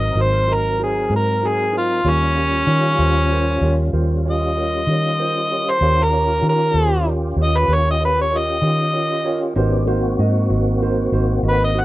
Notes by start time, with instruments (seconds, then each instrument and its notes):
Already playing: fingered electric bass G#1, tonewheel organ F#3 C4 A#4, harmonica D#5
0.15 fingered electric bass G#1, upright piano D#4 F#4 A#4 D#5
0.21 harmonica C5
0.47 upright piano D#4 F#4 A#4 D#5
0.53 harmonica A#4
0.78 upright piano D#4 F#4 A#4 C5
0.83 harmonica G#4
1.10 fingered electric bass G#2, upright piano D#4 F#4 A#4 C5
1.16 harmonica A#4
1.42 upright piano D#4 F#4 A#4 C5
1.48 harmonica G#4
1.73 upright piano D#4 F#4 A#4 C5
1.77 harmonica F4
2.04 fingered electric bass D#2, tonewheel organ G3 C#4 F4, upright piano F4 G4 A#4 C#5
2.09 harmonica C#4
2.35 upright piano F4 G4 A#4 C#5
2.67 fingered electric bass D#3, upright piano F4 G4 A#4 C#5
2.98 fingered electric bass D#2, upright piano F4 G4 A#4 C5
3.30 upright piano F4 G4 A#4 C5
3.61 fingered electric bass D#2, upright piano F4 G4 A#4 C#5
3.93 fingered electric bass D#2, upright piano F4 G4 A#4 C5
4.24 upright piano F4 G4 A#4 C#5
4.30 harmonica D#5
4.56 upright piano F4 G4 A#4 C#5
4.87 fingered electric bass D#3, upright piano F4 G4 A#4 C#5
5.19 upright piano F4 G4 A#4 C5
5.50 upright piano F4 G4 A#4 C#5
5.70 harmonica C5
5.81 fingered electric bass D#2, tonewheel organ C#4 F4 G4, upright piano F4 G4 A#4 C#5
6.03 harmonica A#4
6.13 upright piano F4 G4 A#4 C#5
6.42 fingered electric bass D#3, upright piano F4 G4 A#4 C#5
6.49 harmonica A#4
6.74 fingered electric bass D#2, upright piano F4 G4 A#4 C5
7.06 upright piano F4 G4 A#4 C#5
7.36 fingered electric bass D#2, upright piano F4 G4 A#4 C#5
7.43 harmonica D#5
7.57 harmonica B4
7.68 fingered electric bass D#2, upright piano F4 G4 A#4 C#5
7.74 harmonica C#5
7.91 harmonica D#5
7.99 upright piano F4 G4 A#4 C#5
8.05 harmonica B4
8.21 harmonica C#5
8.30 upright piano F4 G4 A#4 C#5
8.38 harmonica D#5
8.61 fingered electric bass D#3, upright piano F4 G4 A#4 C#5
8.92 upright piano F4 G4 A#4 C#5
9.25 upright piano F4 G4 A#4 C#5
9.56 fingered electric bass G#1, tonewheel organ B3 C#4 G4, upright piano D#4 F#4 A#4 C5
9.87 tonewheel organ A#3 C4 F#4, upright piano D#4 F#4 A#4 C5
10.19 fingered electric bass G#2, upright piano D#4 F#4 A#4 D#5
10.50 fingered electric bass G#1, upright piano D#4 F#4 A#4 D#5
10.82 upright piano D#4 F#4 A#4 C5
11.12 fingered electric bass G#1, upright piano D#4 F#4 A#4 C5
11.43 fingered electric bass G#1, upright piano D#4 F#4 A#4 D#5
11.49 harmonica B4
11.64 harmonica D#5
11.75 upright piano D#4 F#4 A#4 C5
11.80 harmonica F#5